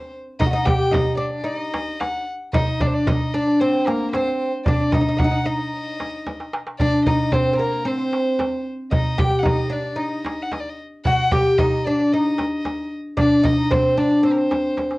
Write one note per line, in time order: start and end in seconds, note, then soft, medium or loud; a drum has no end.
0.00 0.11 C4 medium
0.00 0.14 C5 medium
0.40 0.46 D#4 medium
0.40 0.53 D#5 medium
0.40 darbuka dum medium
0.40 frame drum loud
0.47 0.53 F#4 medium
0.53 0.65 D#4 medium
0.53 0.68 D#5 medium
0.66 0.91 G4 medium
0.66 0.94 G5 medium
0.66 frame drum loud
0.66 darbuka dum medium
0.91 1.17 D#4 medium
0.91 1.18 D#5 medium
0.91 darbuka dum medium
0.91 frame drum loud
1.17 1.44 D4 medium
1.17 1.46 D5 medium
1.44 2.21 D#4 medium
1.44 1.57 D5 medium
1.44 darbuka ka soft
1.57 2.02 D#5 medium
1.74 darbuka tek medium
1.74 frame drum medium
2.00 2.27 F#5 medium
2.00 darbuka tek medium
2.00 frame drum medium
2.53 2.81 D#4 loud
2.53 2.83 D#5 medium
2.53 darbuka dum medium
2.53 frame drum loud
2.80 3.07 D4 medium
2.80 2.88 D5 medium
2.80 darbuka dum medium
2.80 frame drum medium
2.87 2.96 C5 medium
2.94 3.09 D5 medium
2.94 darbuka ka soft
3.07 3.34 D#4 medium
3.07 3.36 D#5 medium
3.07 darbuka dum medium
3.07 frame drum loud
3.34 3.61 D4 medium
3.34 3.62 D5 medium
3.60 3.88 C4 medium
3.60 3.88 C5 medium
3.60 darbuka ka soft
3.86 4.15 A#3 medium
3.86 4.12 A#4 medium
3.86 darbuka tek medium
3.86 frame drum medium
4.12 4.51 C4 medium
4.12 4.50 C5 medium
4.12 darbuka tek medium
4.12 frame drum medium
4.66 4.94 D4 medium
4.66 4.93 D5 medium
4.66 frame drum medium
4.66 darbuka dum medium
4.92 5.00 D#4 medium
4.92 5.20 D#5 medium
4.92 frame drum medium
4.92 darbuka dum medium
5.01 5.07 D#4 medium
5.09 5.16 D#4 medium
5.17 5.23 D#4 medium
5.17 5.48 F#5 medium
5.17 frame drum medium
5.17 darbuka dum medium
5.24 5.30 D#4 medium
5.31 5.39 D#4 medium
5.46 6.48 D#4 medium
5.46 6.53 D#5 medium
5.74 darbuka ka soft
6.00 darbuka tek medium
6.00 frame drum medium
6.26 darbuka tek soft
6.26 frame drum medium
6.40 darbuka ka medium
6.53 darbuka tek medium
6.67 darbuka ka medium
6.80 7.07 D4 loud
6.80 7.04 D5 medium
6.80 frame drum medium
6.80 darbuka dum medium
7.06 7.33 D#4 medium
7.06 7.34 D#5 medium
7.06 frame drum medium
7.06 darbuka dum medium
7.20 darbuka ka soft
7.32 7.52 C4 medium
7.32 7.59 C5 medium
7.32 frame drum medium
7.32 darbuka dum medium
7.53 7.59 C4 medium
7.59 7.85 A#3 medium
7.59 7.88 A#4 medium
7.85 8.61 C4 medium
7.85 8.66 C5 medium
7.85 darbuka ka soft
8.13 darbuka tek medium
8.39 darbuka tek medium
8.39 frame drum medium
8.91 9.18 D#4 medium
8.91 9.21 D#5 medium
8.91 frame drum medium
8.91 darbuka dum medium
9.18 9.42 G4 loud
9.18 9.41 G5 medium
9.18 frame drum medium
9.18 darbuka dum medium
9.39 9.72 D#4 medium
9.39 9.48 F#5 medium
9.45 9.74 D#5 medium
9.45 frame drum medium
9.45 darbuka dum medium
9.70 9.98 D4 medium
9.70 10.01 D5 medium
9.96 10.73 D#4 medium
9.96 10.44 D#5 medium
9.96 darbuka ka soft
10.24 darbuka tek medium
10.24 frame drum medium
10.42 10.53 F#5 medium
10.51 10.62 D#5 medium
10.51 darbuka tek medium
10.51 frame drum medium
10.60 10.71 D5 medium
10.69 10.78 D#5 soft
11.05 11.31 F#4 medium
11.05 11.34 F#5 medium
11.05 frame drum medium
11.05 darbuka dum medium
11.32 11.59 G4 loud
11.32 11.60 G5 medium
11.32 frame drum medium
11.32 darbuka dum medium
11.59 11.86 D#4 medium
11.59 11.88 D#5 medium
11.59 frame drum medium
11.59 darbuka dum medium
11.86 12.13 D4 medium
11.86 12.14 D5 medium
12.12 12.88 D#4 medium
12.12 12.92 D#5 medium
12.12 darbuka ka soft
12.38 darbuka tek medium
12.38 frame drum medium
12.65 darbuka tek medium
12.65 frame drum medium
13.17 13.43 D4 medium
13.17 13.47 D5 medium
13.17 frame drum medium
13.17 darbuka dum medium
13.31 darbuka ka soft
13.43 13.70 D#4 medium
13.43 13.74 D#5 medium
13.43 frame drum medium
13.43 darbuka dum medium
13.58 darbuka ka soft
13.70 13.97 C4 medium
13.70 14.00 C5 medium
13.70 darbuka dum medium
13.70 frame drum loud
13.97 14.25 D4 medium
13.97 14.24 D5 medium
14.23 14.98 C4 medium
14.23 14.34 C5 medium
14.23 darbuka ka soft
14.32 14.39 A#4 medium
14.38 14.98 C5 medium
14.51 darbuka tek medium
14.51 frame drum medium
14.77 darbuka tek soft
14.77 frame drum medium
14.91 darbuka ka medium